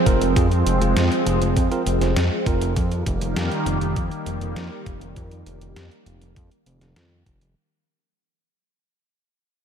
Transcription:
0.00 2.72 F3 medium
0.00 2.72 G#3 medium
0.00 2.72 C4 medium
0.06 0.20 F1 loud
0.06 0.33 C4 medium
0.06 0.33 F4 medium
0.06 0.33 A#4 loud
0.06 kick loud
0.06 closed hi-hat medium
0.21 0.35 F1 loud
0.21 closed hi-hat medium
0.36 0.64 F2 loud
0.36 0.47 C4 medium
0.36 0.47 F4 medium
0.36 0.47 G#4 medium
0.36 kick loud
0.36 closed hi-hat medium
0.51 closed hi-hat soft
0.66 0.80 F1 medium
0.66 closed hi-hat medium
0.81 0.95 F1 medium
0.81 1.23 C4 medium
0.81 1.23 F4 medium
0.81 1.23 G#4 medium
0.81 closed hi-hat medium
0.96 1.10 F2 medium
0.96 snare loud
0.96 closed hi-hat medium
1.12 closed hi-hat soft
1.26 1.40 F1 medium
1.26 1.68 C4 medium
1.26 1.68 F4 medium
1.26 1.68 G#4 medium
1.26 closed hi-hat medium
1.41 1.55 F1 medium
1.41 closed hi-hat medium
1.56 1.70 F2 medium
1.56 kick loud
1.56 closed hi-hat medium
1.71 1.82 C4 medium
1.71 1.82 F4 medium
1.71 1.82 A#4 loud
1.71 closed hi-hat soft
1.86 2.00 F1 medium
1.86 closed hi-hat medium
2.01 2.15 F1 loud
2.01 2.12 C4 medium
2.01 2.12 F4 medium
2.01 2.12 G#4 medium
2.01 snare soft
2.01 closed hi-hat medium
2.16 2.30 F2 loud
2.16 snare loud
2.16 closed hi-hat medium
2.46 2.60 F1 medium
2.46 2.73 C4 medium
2.46 2.73 F4 medium
2.46 2.73 A#4 loud
2.46 kick loud
2.46 closed hi-hat medium
2.61 2.75 F1 medium
2.61 closed hi-hat medium
2.76 3.04 F2 loud
2.76 7.52 D#3 medium
2.76 7.52 G3 medium
2.76 7.52 A#3 medium
2.76 kick loud
2.76 closed hi-hat medium
2.92 closed hi-hat soft
3.06 3.20 F1 loud
3.06 kick medium
3.06 closed hi-hat medium
3.21 3.35 F1 medium
3.21 closed hi-hat medium
3.36 3.50 F2 medium
3.36 snare loud
3.36 closed hi-hat medium
3.51 closed hi-hat soft
3.66 3.80 F1 medium
3.66 closed hi-hat medium
3.81 3.95 F1 medium
3.81 closed hi-hat soft
3.96 4.10 F2 medium
3.96 kick loud
3.96 closed hi-hat medium
4.11 closed hi-hat soft
4.26 4.40 F1 medium
4.26 closed hi-hat medium
4.41 4.55 F1 loud
4.41 closed hi-hat soft
4.56 4.70 F2 loud
4.56 snare loud
4.56 closed hi-hat medium
4.86 5.00 F1 medium
4.86 kick loud
4.86 closed hi-hat medium
5.01 5.15 F1 medium
5.01 closed hi-hat soft
5.16 5.44 F2 medium
5.16 kick loud
5.16 closed hi-hat medium
5.31 closed hi-hat soft
5.46 5.60 F1 medium
5.46 closed hi-hat medium
5.61 5.75 F1 medium
5.61 closed hi-hat soft
5.76 5.90 F2 medium
5.76 snare loud
5.76 closed hi-hat medium
5.91 closed hi-hat soft
6.06 6.20 F1 medium
6.06 closed hi-hat medium
6.21 6.35 F1 medium
6.21 closed hi-hat soft
6.36 6.50 F2 medium
6.36 kick loud
6.36 closed hi-hat medium
6.51 closed hi-hat soft
6.66 6.80 F1 medium
6.66 closed hi-hat medium
6.81 6.95 F1 medium
6.81 snare soft
6.81 closed hi-hat soft
6.96 7.24 F2 medium
6.96 snare loud
6.96 closed hi-hat medium
7.26 7.40 F1 loud
7.26 kick loud
7.26 closed hi-hat medium
7.41 7.55 F1 medium
7.41 closed hi-hat soft

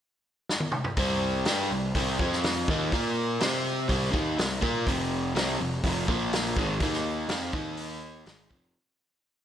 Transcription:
0.49 snare medium
0.60 high tom medium
0.72 mid tom medium
0.84 floor tom medium
0.96 1.42 C2 medium
0.96 1.46 C3 medium
0.96 1.46 G3 medium
0.96 1.46 C4 loud
0.96 kick loud
0.96 open hi-hat medium
1.45 1.69 G2 medium
1.45 1.70 G3 medium
1.45 1.70 D4 medium
1.45 1.71 G4 loud
1.45 snare loud
1.45 open hi-hat medium
1.71 1.93 C2 medium
1.71 1.91 C3 medium
1.71 1.91 G3 medium
1.95 2.18 C2 medium
1.95 2.19 C3 medium
1.95 2.19 G3 medium
1.95 2.19 C4 loud
1.95 kick medium
1.95 open hi-hat medium
2.19 2.65 F2 medium
2.19 2.67 F3 medium
2.19 2.68 C4 medium
2.19 2.68 F4 medium
2.19 kick loud
2.32 snare soft
2.44 snare loud
2.44 open hi-hat medium
2.68 2.90 D#2 medium
2.68 2.92 D#3 medium
2.68 2.92 A#3 loud
2.68 2.93 D#4 medium
2.68 kick loud
2.92 3.37 A#2 medium
2.92 3.40 A#3 medium
2.92 3.41 F4 medium
2.92 3.41 A#4 medium
2.92 kick medium
2.92 open hi-hat soft
3.40 3.86 C3 medium
3.40 3.88 C4 medium
3.40 3.89 G4 medium
3.40 3.89 C5 medium
3.40 snare loud
3.40 open hi-hat medium
3.88 4.12 C2 medium
3.88 4.11 C3 medium
3.88 4.12 G3 medium
3.88 4.13 C4 loud
3.88 kick medium
3.88 open hi-hat soft
4.11 4.36 D#2 medium
4.11 4.36 D#3 medium
4.11 4.37 A#3 medium
4.11 4.37 D#4 medium
4.11 kick medium
4.38 4.61 C2 medium
4.38 4.57 C3 medium
4.38 4.58 G3 medium
4.38 snare loud
4.38 open hi-hat soft
4.61 4.85 A#2 loud
4.61 4.85 A#3 medium
4.61 4.86 F4 medium
4.61 4.86 A#4 loud
4.61 kick medium
4.86 5.32 F1 medium
4.86 5.34 F2 medium
4.86 5.34 C3 loud
4.86 5.35 F3 medium
4.86 kick loud
4.86 open hi-hat medium
5.34 5.57 C2 medium
5.34 5.58 C3 medium
5.34 5.58 G3 medium
5.34 5.59 C4 medium
5.34 snare loud
5.34 open hi-hat medium
5.58 5.81 F1 medium
5.58 5.80 F2 medium
5.58 5.80 C3 medium
5.84 6.06 F1 medium
5.84 6.08 F2 medium
5.84 6.07 C3 medium
5.84 6.07 F3 medium
5.84 kick loud
5.84 open hi-hat medium
6.07 6.53 A#1 medium
6.07 6.55 A#2 medium
6.07 6.56 F3 medium
6.07 6.56 A#3 medium
6.07 kick loud
6.33 snare loud
6.33 open hi-hat medium
6.56 6.79 G#1 medium
6.56 6.80 G#2 medium
6.56 6.81 D#3 medium
6.56 6.81 G#3 medium
6.56 kick loud
6.80 7.26 D#2 medium
6.80 7.29 D#3 medium
6.80 7.29 A#3 medium
6.80 7.30 D#4 medium
6.80 kick loud
6.80 open hi-hat medium
6.93 snare soft
7.29 7.52 F2 medium
7.29 7.53 F3 medium
7.29 7.54 C4 loud
7.29 7.54 F4 medium
7.29 snare loud
7.29 open hi-hat medium
7.53 8.23 D#2 medium
7.53 8.26 D#3 medium
7.53 8.26 A#3 loud
7.53 8.27 D#4 loud
7.53 kick loud
7.77 open hi-hat medium
8.26 8.49 G#1 medium
8.26 8.49 G#2 medium
8.26 8.49 D#3 medium
8.26 8.50 G#3 medium
8.26 snare loud
8.26 open hi-hat soft
8.49 8.74 F1 medium
8.49 8.74 F2 medium
8.49 8.74 C3 medium
8.49 8.75 F3 medium
8.49 kick medium

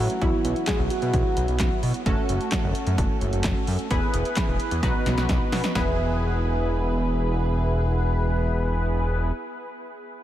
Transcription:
0.00 0.18 E3 medium
0.00 0.18 A3 medium
0.00 0.18 C#4 medium
0.00 0.18 E4 medium
0.00 0.23 F#4 medium
0.10 closed hi-hat medium
0.21 0.31 B1 loud
0.21 2.02 F#3 medium
0.21 2.02 B3 medium
0.21 2.02 E4 medium
0.21 0.67 E4 loud
0.21 2.02 F#4 medium
0.21 kick loud
0.21 closed hi-hat medium
0.45 0.54 B1 loud
0.45 closed hi-hat medium
0.56 closed hi-hat medium
0.67 0.78 G#4 loud
0.67 kick loud
0.67 snare loud
0.67 clap loud
0.67 closed hi-hat medium
0.79 0.89 B1 loud
0.90 1.79 F#4 loud
0.90 closed hi-hat medium
1.02 1.12 B2 loud
1.02 closed hi-hat medium
1.14 1.23 B1 loud
1.14 kick loud
1.14 closed hi-hat medium
1.37 1.47 B1 loud
1.37 closed hi-hat medium
1.48 1.58 B1 loud
1.48 closed hi-hat medium
1.60 1.69 B1 loud
1.60 kick loud
1.60 snare loud
1.60 clap loud
1.60 closed hi-hat medium
1.83 1.93 B2 loud
1.83 open hi-hat medium
1.94 closed hi-hat medium
2.06 2.16 F#1 loud
2.06 3.87 A3 medium
2.06 3.87 C#4 medium
2.06 3.87 F#4 medium
2.06 3.87 A4 medium
2.06 kick loud
2.06 closed hi-hat medium
2.29 2.39 F#1 loud
2.29 closed hi-hat medium
2.41 closed hi-hat medium
2.52 kick loud
2.52 snare loud
2.52 clap loud
2.52 closed hi-hat medium
2.64 2.74 F#1 loud
2.75 closed hi-hat medium
2.87 2.96 F#2 loud
2.87 closed hi-hat medium
2.98 3.08 F#1 loud
2.98 kick loud
2.98 closed hi-hat medium
3.21 3.31 F#1 loud
3.21 closed hi-hat medium
3.33 3.43 F#1 loud
3.33 closed hi-hat medium
3.44 3.54 F#1 loud
3.44 kick loud
3.44 snare loud
3.44 clap loud
3.44 closed hi-hat medium
3.67 3.77 F#2 loud
3.67 open hi-hat medium
3.79 closed hi-hat medium
3.91 4.00 E1 loud
3.91 4.81 B3 medium
3.91 4.81 E4 medium
3.91 4.81 G#4 medium
3.91 4.81 B4 medium
3.91 kick loud
3.91 closed hi-hat medium
4.14 4.24 E1 loud
4.14 closed hi-hat medium
4.25 closed hi-hat medium
4.37 kick loud
4.37 snare loud
4.37 clap loud
4.37 closed hi-hat medium
4.48 4.58 E1 loud
4.60 closed hi-hat medium
4.71 4.81 E2 loud
4.71 closed hi-hat medium
4.83 4.93 B1 loud
4.83 5.73 B3 medium
4.83 5.73 D#4 medium
4.83 5.73 F#4 medium
4.83 5.73 B4 medium
4.83 kick loud
4.83 snare medium
4.83 closed hi-hat medium
5.06 5.16 B1 loud
5.06 snare medium
5.06 closed hi-hat medium
5.18 5.27 B1 loud
5.18 snare medium
5.18 closed hi-hat medium
5.29 5.39 B1 loud
5.29 kick loud
5.29 snare loud
5.29 closed hi-hat medium
5.52 5.62 B2 loud
5.52 snare loud
5.52 open hi-hat medium
5.64 snare loud
5.64 closed hi-hat medium
5.75 9.32 E1 loud
5.75 9.32 B3 medium
5.75 9.32 E4 medium
5.75 9.32 G#4 medium
5.75 9.32 B4 loud
5.75 kick loud
5.75 snare loud

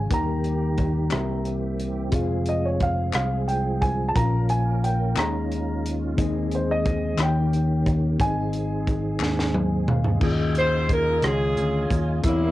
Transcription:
0.00 0.12 C#3 medium
0.00 0.12 C#4 medium
0.00 0.13 F4 medium
0.00 0.13 G#4 medium
0.00 0.11 F5 medium
0.00 0.13 G#5 medium
0.10 1.08 D#2 medium
0.10 1.11 D#3 medium
0.10 1.08 D#3 soft
0.10 1.10 G3 soft
0.10 2.11 A#3 soft
0.10 1.11 D#4 medium
0.10 1.09 G4 soft
0.10 1.11 G4 medium
0.10 1.10 A#4 soft
0.10 1.13 G5 medium
0.10 kick medium
0.10 closed hi-hat medium
0.14 1.43 A#5 medium
0.44 closed hi-hat soft
0.78 kick medium
0.78 closed hi-hat soft
1.10 2.09 C2 medium
1.10 2.09 C3 medium
1.10 2.13 E3 soft
1.10 2.09 C4 medium
1.10 4.13 C4 soft
1.10 2.12 G4 medium
1.10 2.13 A#4 soft
1.10 2.13 E5 medium
1.10 cross-stick medium
1.10 clap medium
1.10 closed hi-hat medium
1.45 closed hi-hat soft
1.80 closed hi-hat soft
2.10 3.10 F1 medium
2.10 4.10 C4 medium
2.10 4.11 F4 medium
2.10 4.11 G#4 medium
2.10 kick medium
2.10 closed hi-hat medium
2.14 5.14 F3 medium
2.14 4.14 G#3 soft
2.14 4.14 G#4 soft
2.14 4.12 F5 medium
2.46 2.65 D#5 medium
2.46 closed hi-hat soft
2.65 2.82 C#5 medium
2.80 3.13 F5 medium
2.80 kick medium
2.80 closed hi-hat soft
3.13 4.12 C2 medium
3.13 3.49 F5 medium
3.13 cross-stick medium
3.13 clap medium
3.13 closed hi-hat medium
3.48 3.83 G5 medium
3.48 closed hi-hat soft
3.81 4.09 G#5 medium
3.81 kick medium
3.81 closed hi-hat soft
4.08 4.15 A5 medium
4.15 5.13 A#1 medium
4.15 5.13 A#2 medium
4.15 5.16 A#3 soft
4.15 4.22 C4 soft
4.15 6.15 C#4 soft
4.15 5.15 F4 soft
4.15 5.16 A#4 medium
4.15 5.17 A#4 soft
4.15 5.18 F5 medium
4.15 4.47 A#5 medium
4.15 kick medium
4.15 closed hi-hat medium
4.22 5.14 C#4 medium
4.49 4.81 G#5 medium
4.49 closed hi-hat soft
4.84 5.18 G5 medium
4.84 closed hi-hat soft
5.15 6.13 D#2 medium
5.15 6.13 D#3 soft
5.15 8.18 D#3 medium
5.15 6.17 C#4 soft
5.15 6.17 F4 soft
5.15 6.16 G#4 soft
5.15 6.17 D#5 medium
5.15 5.89 A#5 medium
5.15 clap medium
5.15 closed hi-hat medium
5.19 7.18 G#3 soft
5.19 6.18 F4 medium
5.19 cross-stick medium
5.52 closed hi-hat soft
5.86 closed hi-hat soft
6.15 7.15 D#2 medium
6.15 7.14 D#3 medium
6.15 7.18 C4 medium
6.15 7.17 D#4 medium
6.15 7.19 G#4 medium
6.15 7.19 D#5 medium
6.15 kick medium
6.15 closed hi-hat medium
6.20 7.20 C4 soft
6.20 7.19 G#4 medium
6.51 6.70 C5 medium
6.51 closed hi-hat soft
6.71 7.17 D#5 medium
6.86 kick medium
6.86 closed hi-hat soft
7.17 8.15 D#2 medium
7.17 8.16 D#3 soft
7.17 8.19 A#3 medium
7.17 8.19 C#4 soft
7.17 8.19 D#4 soft
7.17 8.20 G4 soft
7.17 8.19 G4 medium
7.17 8.21 C#5 medium
7.17 cross-stick medium
7.17 clap medium
7.17 closed hi-hat medium
7.23 7.84 G5 medium
7.53 closed hi-hat soft
7.86 kick medium
7.86 closed hi-hat soft
8.18 9.17 G#1 medium
8.18 9.17 G#2 medium
8.18 10.20 D#3 soft
8.18 10.20 G#3 soft
8.18 8.26 B3 soft
8.18 10.20 C4 soft
8.18 10.18 D#4 soft
8.18 10.20 G#4 medium
8.18 10.19 G#4 soft
8.18 9.85 G#5 medium
8.18 kick medium
8.18 closed hi-hat medium
8.24 10.20 C4 medium
8.24 10.20 D#5 medium
8.53 closed hi-hat soft
8.87 kick medium
8.87 closed hi-hat soft
9.20 10.18 D#2 medium
9.20 snare soft
9.20 clap loud
9.39 snare soft
9.55 9.86 G#5 medium
9.55 high tom medium
9.88 10.21 F5 medium
9.88 mid tom medium
10.04 floor tom medium
10.20 11.19 D#2 medium
10.20 11.20 D#3 medium
10.20 12.19 C#4 medium
10.20 12.22 F4 soft
10.20 12.21 F4 medium
10.20 12.21 G#4 medium
10.20 12.22 D#5 soft
10.20 12.22 G#5 medium
10.20 kick medium
10.20 crash medium
10.26 10.31 D5 medium
10.32 12.25 D#5 medium
10.55 10.89 C5 medium
10.55 closed hi-hat soft
10.89 11.25 A#4 medium
10.89 kick medium
10.89 closed hi-hat medium
11.22 11.54 C#2 medium
11.22 12.21 C#4 medium
11.22 12.21 F4 medium
11.22 11.91 G#4 medium
11.22 cross-stick loud
11.22 closed hi-hat medium
11.57 11.88 D2 medium
11.57 closed hi-hat soft
11.90 12.21 D#2 medium
11.90 kick medium
11.90 closed hi-hat medium
12.22 12.51 E2 medium
12.22 12.51 E3 medium
12.22 12.51 C4 medium
12.22 12.51 E4 soft
12.22 12.51 E4 medium
12.22 12.51 A#4 medium
12.22 12.51 A#4 soft
12.22 12.51 E5 soft
12.22 12.51 C6 medium
12.22 kick medium
12.22 closed hi-hat medium
12.26 12.51 G3 medium
12.26 12.51 A#3 medium
12.26 12.51 C#5 medium

